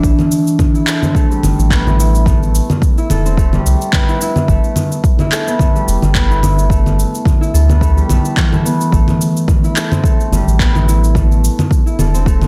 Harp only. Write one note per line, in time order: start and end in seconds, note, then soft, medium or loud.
0.00 1.15 A3 medium
0.00 1.08 B3 medium
0.00 2.56 D4 medium
0.00 0.74 E4 medium
0.00 0.85 A4 medium
0.75 1.86 E4 medium
0.87 3.07 A4 medium
1.02 1.77 C4 medium
1.15 2.26 A3 loud
1.30 3.52 G3 medium
1.71 3.32 B3 loud
1.86 1.99 E4 medium
1.99 2.97 E4 medium
2.27 3.38 A3 medium
2.98 4.08 E4 medium
3.10 5.30 A4 medium
3.26 4.00 C4 medium
3.38 4.49 A3 loud
3.53 4.54 G3 medium
3.94 5.47 B3 loud
4.08 4.21 E4 medium
4.22 5.19 E4 medium
4.50 5.60 A3 medium
5.20 6.30 E4 medium
5.33 7.52 A4 medium
5.47 6.15 B3 medium
5.75 7.96 G3 medium
6.16 7.69 B3 loud
6.30 6.43 E4 medium
6.43 7.41 E4 medium
6.71 7.81 A3 medium
7.41 9.63 E4 medium
7.54 9.73 A4 medium
7.69 8.64 B3 medium
7.82 8.09 A3 loud
7.97 8.98 G3 medium
8.09 8.52 A3 medium
8.37 8.98 E3 medium
8.52 8.93 A3 medium
8.65 9.98 B3 medium
8.93 10.04 A3 medium
9.64 10.74 E4 medium
9.76 11.96 A4 medium
9.92 10.66 C4 medium
10.04 11.16 A3 medium
10.33 12.47 G3 medium
10.60 12.20 B3 loud
10.75 10.88 E4 medium
10.88 11.86 E4 medium
11.16 12.26 A3 medium
11.86 12.47 E4 medium
11.99 12.47 A4 medium
12.14 12.47 C4 medium
12.26 12.47 A3 medium